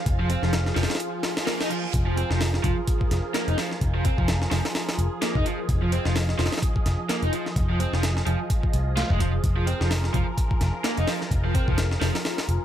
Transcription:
Already playing: F3 F4 G#4 F5
0.06 F1, kick, closed hi-hat
0.20 F3
0.29 C4, closed hi-hat
0.43 F1 F3, snare
0.53 snare, closed hi-hat
0.66 snare
0.76 F1 F3, snare, open hi-hat
0.83 snare, open hi-hat
0.90 snare, open hi-hat
0.95 snare, open hi-hat
1.00 closed hi-hat, reverse cymbal
1.23 snare, open hi-hat
1.37 snare, open hi-hat
1.47 A#3, snare, open hi-hat
1.60 D#4, snare, open hi-hat
1.70 F3, closed hi-hat
1.93 F1 A#4, kick, closed hi-hat
2.07 F3
2.17 C4, closed hi-hat
2.31 F1 F3, snare
2.41 snare, open hi-hat
2.54 snare
2.64 F1 F3, kick, closed hi-hat
2.87 kick, closed hi-hat
3.01 kick
3.11 F1, snare, closed hi-hat
3.34 A#3, snare, closed hi-hat
3.48 F1 D#4, closed hi-hat
3.58 F3, snare, open hi-hat
3.71 snare
3.81 F1, kick, closed hi-hat
3.95 F3
4.04 C4, kick, closed hi-hat
4.18 F1 F3, kick
4.28 snare, closed hi-hat
4.42 snare
4.51 F1 F3, snare, open hi-hat
4.65 snare, open hi-hat
4.75 snare, open hi-hat
4.89 snare, open hi-hat
4.98 F1, closed hi-hat
5.22 A#3, snare, closed hi-hat
5.35 F1 D#4, kick
5.46 F3, closed hi-hat
5.69 F1 D#5, kick, closed hi-hat
5.82 F3
5.92 C4, closed hi-hat
6.05 F1 F3, snare
6.16 snare, open hi-hat
6.29 snare
6.39 F1 F3, snare, open hi-hat
6.46 snare, open hi-hat
6.52 snare, open hi-hat
6.58 snare, open hi-hat
6.62 kick, closed hi-hat
6.76 kick
6.86 F1, snare, closed hi-hat
7.09 A#3, snare, closed hi-hat
7.22 F1 D#4, closed hi-hat
7.33 F3, closed hi-hat
7.46 snare
7.56 F1, kick, closed hi-hat
7.70 F3
7.80 C4, closed hi-hat
7.93 F1 F3, snare
8.03 snare, closed hi-hat
8.17 snare
8.26 F1 F3, closed hi-hat
8.50 kick, closed hi-hat
8.63 kick
8.73 C2, closed hi-hat
8.97 F4, snare, closed hi-hat
9.10 F1 G#3, kick
9.20 F3, kick, closed hi-hat
9.44 F1 A#4, kick, closed hi-hat
9.57 F3
9.67 C4, closed hi-hat
9.81 F1 F3, snare
9.91 snare, open hi-hat
10.04 snare
10.14 F1 F3, kick, closed hi-hat
10.38 kick, closed hi-hat
10.51 kick
10.61 F1, snare, closed hi-hat
10.84 A#3, snare, closed hi-hat
10.97 F1 D#4, closed hi-hat
11.08 F3, snare, open hi-hat
11.21 snare
11.31 F1, kick, closed hi-hat
11.45 F3
11.55 C4, kick, closed hi-hat
11.68 F1 F3, kick
11.78 snare, closed hi-hat
11.91 snare
12.01 F1 F3, snare, open hi-hat
12.15 snare, open hi-hat
12.25 snare, open hi-hat
12.38 snare, open hi-hat
12.49 F1, closed hi-hat

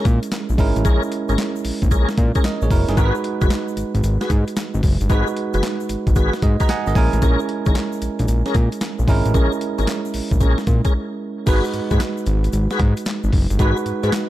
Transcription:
Already playing: G#3 C#4 E4 A#4
0.05 A#2, kick, closed hi-hat, shaker
0.23 closed hi-hat, shaker
0.32 snare, clap, closed hi-hat, shaker
0.49 A#1, shaker
0.58 G#1 G#3 C#4 E4 A#4, kick, open hi-hat, shaker
0.76 A1, closed hi-hat, shaker
0.85 A#1 C#4 G#4 A#4, kick, closed hi-hat, shaker
1.03 shaker
1.12 closed hi-hat, shaker
1.29 G#1 C#4 G#4 A#4, closed hi-hat, shaker
1.38 snare, clap, closed hi-hat, shaker
1.56 shaker
1.65 A#1, open hi-hat, shaker
1.82 A#1, kick, closed hi-hat, shaker
1.91 A#1 C#4 G#4 A#4, kick, closed hi-hat, shaker
2.09 snare, shaker
2.17 A#2, kick, closed hi-hat, shaker
2.35 C#4 G#4 A#4, kick, closed hi-hat, shaker
2.44 A#4 D#5, snare, clap, closed hi-hat, shaker
2.62 A#1 G#4 C#5, shaker
2.71 F#1 E4 A#4, kick, open hi-hat, shaker
2.88 G1 D#4 G#4, snare, closed hi-hat, shaker
2.97 G#1 G#3 D#4 F#4 G#4 A#4 B4, kick, closed hi-hat, shaker
3.06 B4
3.15 shaker
3.24 closed hi-hat
3.41 F#1 F#4 G#4 B4, kick, closed hi-hat, shaker
3.50 snare, clap, closed hi-hat, shaker
3.68 shaker
3.77 G#1, closed hi-hat, shaker
3.95 G#1, closed hi-hat, shaker
4.03 G#1, closed hi-hat, shaker
4.21 F#4 G#4 B4, snare, shaker
4.30 G#2, kick, closed hi-hat, shaker
4.48 closed hi-hat, shaker
4.56 snare, clap, closed hi-hat, shaker
4.74 G#1, shaker
4.83 F#1, kick, open hi-hat, shaker
5.00 G1, closed hi-hat, shaker
5.09 G#1 G#3 D#4 F#4 G#4 B4, kick, closed hi-hat, shaker
5.27 shaker
5.37 closed hi-hat
5.53 F#1 F#4 G#4 B4, closed hi-hat, shaker
5.63 snare, clap, closed hi-hat, shaker
5.80 shaker
5.89 G#1, closed hi-hat, shaker
6.07 G#1, kick, closed hi-hat, shaker
6.15 G#1 F#4 G#4 B4, kick, closed hi-hat, shaker
6.33 snare, shaker
6.42 G#2 D#5, kick, closed hi-hat, shaker
6.60 F#4 G#4 B4 D#5 A#5, kick, closed hi-hat, shaker
6.69 D#5 F#5 G#5, snare, clap, closed hi-hat, shaker
6.86 G#1 A#4 D#5, shaker
6.95 A#1 G#3 C#4 E4 A#4 G#5, kick, open hi-hat, shaker
7.13 A1, closed hi-hat, shaker
7.22 A#1 C#4 G#4 A#4, kick, closed hi-hat, shaker
7.39 shaker
7.49 closed hi-hat
7.66 G#1 C#4 G#4 A#4, kick, closed hi-hat, shaker
7.75 snare, clap, closed hi-hat, shaker
7.92 shaker
8.02 A#1, closed hi-hat, shaker
8.19 A#1, closed hi-hat, shaker
8.28 A#1, closed hi-hat, shaker
8.46 C#4 G#4 A#4, snare, shaker
8.54 A#2, kick, closed hi-hat, shaker
8.72 closed hi-hat, shaker
8.81 snare, clap, closed hi-hat, shaker
8.99 A#1, shaker
9.07 G#1 G#3 C#4 E4 A#4, kick, open hi-hat, shaker
9.25 A1, closed hi-hat, shaker
9.34 A#1 C#4 G#4 A#4, kick, closed hi-hat, shaker
9.52 shaker
9.61 closed hi-hat, shaker
9.78 G#1 C#4 G#4 A#4, closed hi-hat, shaker
9.87 snare, clap, closed hi-hat, shaker
10.05 shaker
10.14 A#1, open hi-hat, shaker
10.31 A#1, kick, closed hi-hat, shaker
10.40 A#1 C#4 G#4 A#4, kick, closed hi-hat, shaker
10.58 snare, shaker
10.67 A#2, kick, closed hi-hat, shaker
10.85 C#4 G#4 A#4, kick, closed hi-hat, shaker
11.46 G#1 G#3 D#4 F#4 G#4 B4, kick, closed hi-hat, crash, shaker
11.64 shaker
11.73 G#2, closed hi-hat, shaker
11.90 G#2 F#4 G#4 B4, kick, closed hi-hat, shaker
12.00 snare, clap, closed hi-hat, shaker
12.17 shaker
12.26 G#1, closed hi-hat, shaker
12.44 closed hi-hat, shaker
12.53 G#1, closed hi-hat, shaker
12.70 F#4 G#4 B4, snare, shaker
12.79 G#2, kick, closed hi-hat
12.97 closed hi-hat, shaker
13.06 snare, clap, closed hi-hat, shaker
13.23 G#1, shaker
13.33 F#1, kick, open hi-hat
13.50 G1, closed hi-hat, shaker
13.59 G#1 G#3 D#4 F#4 G#4 B4, kick, closed hi-hat, shaker
13.77 shaker
13.86 G#2, closed hi-hat, shaker
14.03 G#2 F#4 G#4 B4, closed hi-hat, shaker
14.12 snare, clap, closed hi-hat, shaker

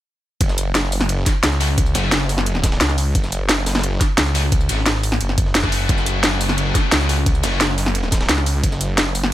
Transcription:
0.41 F#1, kick, closed hi-hat, ride
0.49 snare, tambourine
0.58 closed hi-hat, ride, tambourine
0.75 snare, closed hi-hat, ride
0.84 snare
0.92 open hi-hat, ride, tambourine
1.01 snare
1.09 closed hi-hat, ride
1.26 kick, snare, closed hi-hat, ride, tambourine
1.43 C#2, snare, closed hi-hat, ride
1.52 snare, tambourine
1.60 A3 C#4 F#4, snare, open hi-hat, ride, tambourine
1.78 kick, closed hi-hat, ride
1.86 tambourine
1.95 F#1 A3 C#4 F#4, closed hi-hat, open hi-hat, tambourine
2.03 A3 C#4 F#4, snare
2.12 snare, closed hi-hat, ride
2.21 snare
2.29 snare, open hi-hat, ride, tambourine
2.38 snare
2.46 closed hi-hat, ride
2.55 snare
2.63 kick, snare, closed hi-hat, ride, tambourine
2.72 snare, ride
2.81 C#2, snare, closed hi-hat, ride
2.89 snare, tambourine
2.98 open hi-hat, ride, tambourine
3.15 F#1, kick, closed hi-hat, ride
3.24 snare, tambourine
3.32 closed hi-hat, ride, tambourine
3.49 snare, closed hi-hat, ride
3.58 snare
3.66 snare, open hi-hat, ride, tambourine
3.75 snare, ride
3.79 snare, ride
3.83 closed hi-hat, ride
4.01 kick, snare, closed hi-hat, ride, tambourine
4.18 C#2, snare, closed hi-hat, ride
4.26 snare, tambourine
4.35 A3 C#4 F#4, snare, open hi-hat, ride, tambourine
4.52 kick, closed hi-hat, ride
4.61 tambourine
4.69 G#1 A3 C#4 F#4, closed hi-hat, open hi-hat, tambourine
4.78 snare
4.86 snare, closed hi-hat, ride
4.95 snare
5.03 open hi-hat, ride, tambourine
5.12 snare
5.21 F#1, closed hi-hat, ride
5.29 snare
5.38 kick, closed hi-hat, ride, tambourine
5.46 snare
5.55 snare, closed hi-hat, ride
5.63 A3 C#4 F#4, kick, snare, tambourine
5.72 open hi-hat, ride, tambourine
5.89 F#1, kick, closed hi-hat, ride
5.98 snare, tambourine
6.06 closed hi-hat, ride, tambourine
6.24 snare, closed hi-hat, ride
6.32 snare
6.41 open hi-hat, ride, tambourine
6.49 snare
6.58 closed hi-hat, ride
6.75 kick, snare, closed hi-hat, ride, tambourine
6.92 C#2, snare, closed hi-hat, ride
7.01 snare, tambourine
7.09 A3 C#4 F#4, snare, open hi-hat, ride, tambourine
7.26 kick, closed hi-hat, ride
7.35 tambourine
7.43 F#1 A3 C#4 F#4, closed hi-hat, open hi-hat, tambourine
7.52 A3 C#4 F#4, snare
7.61 snare, closed hi-hat, ride
7.69 snare
7.78 snare, open hi-hat, ride, tambourine
7.86 snare
7.95 closed hi-hat, ride
8.03 snare
8.12 kick, snare, closed hi-hat, ride, tambourine
8.21 snare, ride
8.29 C#2, snare, closed hi-hat, ride
8.38 snare, tambourine
8.46 open hi-hat, ride, tambourine
8.63 F#1, kick, closed hi-hat, ride
8.72 snare, tambourine
8.81 closed hi-hat, ride, tambourine
8.98 snare, closed hi-hat, ride
9.06 snare
9.15 open hi-hat, ride, tambourine
9.24 snare

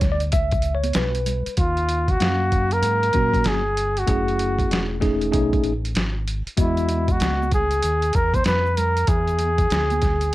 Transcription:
Already playing: D2
0.01 kick, snare, closed hi-hat, low conga, shaker
0.12 D5
0.20 closed hi-hat, shaker
0.32 C#2 E5, kick, closed hi-hat, shaker
0.51 kick, closed hi-hat, shaker
0.62 closed hi-hat, shaker
0.75 C#5
0.84 closed hi-hat, high conga, shaker
0.93 B1 B4, snare, closed hi-hat, low conga, shaker
1.14 closed hi-hat, shaker
1.26 closed hi-hat, low conga, shaker
1.46 muted fingered electric bass stroke, closed hi-hat, shaker
1.57 D#2 F4, kick, closed hi-hat
1.77 closed hi-hat
1.89 closed hi-hat
2.08 F#4, kick, closed hi-hat
2.20 F#2 F#3 A#3 C#4 F5, snare, closed hi-hat
2.52 kick, closed hi-hat
2.71 A#4, closed hi-hat
2.82 G#2, closed hi-hat
3.03 closed hi-hat
3.13 A#2 F#3 A#3 C#4 F#4, kick, closed hi-hat
3.34 kick, closed hi-hat
3.44 G1 G#4, snare, closed hi-hat
3.77 closed hi-hat
3.97 F#4, closed hi-hat
4.07 F#1 A3 C#4 E4 G#4, kick, closed hi-hat
4.28 closed hi-hat
4.39 closed hi-hat
4.59 kick, closed hi-hat
4.71 E1, snare, closed hi-hat
5.00 A3 C#4 D#4 G#4, kick, snare, closed hi-hat
5.21 closed hi-hat
5.31 B1 A3 C#4 D#4 G#4, kick, closed hi-hat
5.53 kick, closed hi-hat
5.64 A1, closed hi-hat
5.85 closed hi-hat
5.95 G#1, snare, closed hi-hat
6.28 closed hi-hat
6.46 muted fingered electric bass stroke, closed hi-hat
6.57 E2 G#3 B3 E4 F#4 D#5, kick, closed hi-hat, shaker
6.77 closed hi-hat, shaker
6.89 closed hi-hat, high conga, shaker
7.08 F#4, kick, closed hi-hat, shaker
7.20 C#2, snare, closed hi-hat, high conga, shaker
7.42 high conga, shaker
7.51 G#4, kick, closed hi-hat, low conga, shaker
7.71 closed hi-hat, shaker
7.83 D#2, closed hi-hat, shaker
8.02 closed hi-hat, shaker
8.13 E2 A#4, kick, closed hi-hat, shaker
8.34 C5, kick, closed hi-hat, high conga, shaker
8.44 F2 B4, snare, closed hi-hat, low conga, shaker
8.66 shaker
8.77 A#4, closed hi-hat, low conga, shaker
8.97 closed hi-hat, shaker
9.07 E2 G#4, kick, closed hi-hat, shaker
9.27 closed hi-hat, shaker
9.39 closed hi-hat, high conga, shaker
9.58 kick, closed hi-hat, shaker
9.70 D2, snare, closed hi-hat, high conga, shaker
9.90 closed hi-hat, high conga, shaker
10.02 kick, snare, closed hi-hat, low conga, shaker
10.21 closed hi-hat, shaker

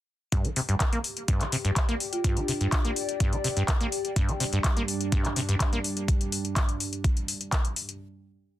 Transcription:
0.32 G2 G4, kick, closed hi-hat
0.45 G3, closed hi-hat
0.56 C3, open hi-hat
0.69 G2, closed hi-hat
0.80 kick, clap, closed hi-hat
0.93 A#3, closed hi-hat
1.00 G5
1.04 open hi-hat
1.10 D5
1.17 closed hi-hat
1.28 G2, kick, closed hi-hat
1.41 G3, clap, closed hi-hat
1.52 C3, open hi-hat
1.65 G2, closed hi-hat
1.76 kick, clap, closed hi-hat
1.89 A#3, closed hi-hat
2.00 open hi-hat
2.13 F4, closed hi-hat
2.24 G2 F4, kick, closed hi-hat
2.37 G3 D4, closed hi-hat
2.48 C3 D4, open hi-hat
2.61 G2, closed hi-hat
2.72 kick, clap, closed hi-hat
2.85 A#3, closed hi-hat
2.96 open hi-hat
3.09 closed hi-hat
3.20 G2, kick, closed hi-hat
3.33 G3, closed hi-hat
3.44 C3, open hi-hat
3.57 G2, closed hi-hat
3.68 kick, clap, closed hi-hat
3.81 A#3, closed hi-hat
3.92 open hi-hat
4.05 closed hi-hat
4.16 G2 G3 D4, kick, closed hi-hat
4.29 G3, closed hi-hat
4.40 C3, open hi-hat
4.53 G2, closed hi-hat
4.64 kick, clap, closed hi-hat
4.77 A#3, closed hi-hat
4.88 open hi-hat
5.01 closed hi-hat
5.12 G2, kick, closed hi-hat
5.25 G3, clap, closed hi-hat
5.36 C3, open hi-hat
5.49 G2, closed hi-hat
5.60 kick, clap, closed hi-hat
5.73 A#3, closed hi-hat
5.84 open hi-hat
5.97 closed hi-hat
6.08 kick, closed hi-hat
6.21 closed hi-hat
6.32 open hi-hat
6.45 closed hi-hat
6.56 kick, clap, closed hi-hat
6.69 closed hi-hat
6.80 open hi-hat
6.93 closed hi-hat
7.04 kick, closed hi-hat
7.17 closed hi-hat
7.28 open hi-hat
7.41 closed hi-hat
7.52 kick, clap, closed hi-hat
7.65 closed hi-hat
7.76 open hi-hat
7.89 closed hi-hat

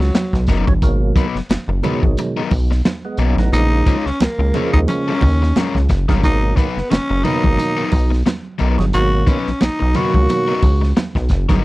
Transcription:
Already playing: C#2 F#3
0.00 muted overdriven electric guitar stroke, snare
0.15 muted overdriven electric guitar stroke, snare, closed hi-hat, high conga
0.33 B1, kick, snare
0.46 F#1 F#3 B3 D#4 A#4, kick, snare, closed hi-hat
0.67 G1 F#3 C#4, muted overdriven electric guitar stroke, kick, high conga
0.81 G#1 B2 D#3 F#3 A#3, kick, closed hi-hat
1.16 F#3 B3 D#4 B4, kick, closed hi-hat
1.35 F#1, snare
1.49 F#1, muted overdriven electric guitar stroke, snare, closed hi-hat, high conga
1.68 F#1, muted overdriven electric guitar stroke
1.82 B2 D#3 F#3 G#3 B3 D#4 B4, closed hi-hat, muted conga, low conga
2.03 G#1, muted overdriven electric guitar stroke, kick
2.17 muted overdriven electric guitar stroke, closed hi-hat, muted conga
2.37 F#3 B3 D#4 A#4
2.51 B1, muted overdriven electric guitar stroke, kick, open hi-hat, muted conga
2.71 muted overdriven electric guitar stroke, snare
2.85 muted overdriven electric guitar stroke, snare, closed hi-hat, high conga
3.05 G#3 B3
3.17 B1 F#3 A#3 B3 C#4 D#4 A#4, closed hi-hat
3.37 A1 B3 D#4, muted overdriven electric guitar stroke, snare, high conga
3.52 A#1 C#3 F3 G#3 A#3 D#4, closed hi-hat
3.86 G#3 C#4 F4 C#5, kick, closed hi-hat, muted conga
4.06 C#2 C#4, snare
4.20 C#2 A#3, muted overdriven electric guitar stroke, snare, closed hi-hat, high conga
4.39 C#2, muted overdriven electric guitar stroke
4.54 C#3 F3 G#3 A#3 C#4 F4 C#5, closed hi-hat, muted conga, low conga
4.73 D#2 D#4, muted overdriven electric guitar stroke, kick
4.88 C#4, muted overdriven electric guitar stroke, closed hi-hat, muted conga
5.08 G#3 C#4 F4 A#4
5.21 D#2, muted overdriven electric guitar stroke, kick, open hi-hat, muted conga, low conga
5.42 muted overdriven electric guitar stroke, snare
5.56 G#3 C#4 F4 A#4, snare, closed hi-hat, high conga
5.75 C#2, kick, snare
5.89 F#1, muted overdriven electric guitar stroke, kick, snare, closed hi-hat
6.08 G1 G#3 A#3 C#4 F4 A#4, kick, snare, high conga
6.23 G#1 B2 D#3 F#3 A#3 D#4, kick, closed hi-hat
6.56 F#3 B3 D#4 B4, kick, closed hi-hat
6.77 F#1, snare
6.90 F#1 C#4, muted overdriven electric guitar stroke, snare, closed hi-hat, high conga
7.10 F#1, muted overdriven electric guitar stroke
7.24 B2 D#3 F#3 A#3 B3 D#4 B4, closed hi-hat, muted conga, low conga
7.43 G#1, muted overdriven electric guitar stroke, kick
7.57 muted overdriven electric guitar stroke, closed hi-hat, muted conga
7.77 F#3 B3 D#4 A#4
7.92 B1, muted overdriven electric guitar stroke, kick, open hi-hat, muted conga
8.11 muted overdriven electric guitar stroke, snare
8.26 muted overdriven electric guitar stroke, snare, closed hi-hat, high conga
8.59 B1 F#3 B3 D#4 A#4, closed hi-hat
8.78 G1 F#3 G#3, muted overdriven electric guitar stroke, snare, high conga
8.93 G#1 B2 D#3 F#3 A#3 F#4, closed hi-hat
9.27 F#3 B3 C#4 D#4 B4, kick, closed hi-hat, muted conga
9.47 B1, snare
9.61 B1 D#4, muted overdriven electric guitar stroke, snare, closed hi-hat, high conga
9.80 B1, muted overdriven electric guitar stroke
9.94 B2 D#3 F#3 A#3 B3 D#4 F#4 B4, closed hi-hat, muted conga, low conga
10.14 C#2, muted overdriven electric guitar stroke, kick
10.29 muted overdriven electric guitar stroke, closed hi-hat, muted conga
10.48 F#3 B3 D#4 A#4
10.62 C#2, muted overdriven electric guitar stroke, kick, open hi-hat, muted conga, low conga
10.81 muted overdriven electric guitar stroke, snare
10.97 muted overdriven electric guitar stroke, snare, closed hi-hat, high conga
11.15 B1, muted overdriven electric guitar stroke, kick, snare
11.29 F#1, kick, snare, closed hi-hat
11.49 G1 F#3 G#3 B3 D#4 A#4, kick, snare, high conga

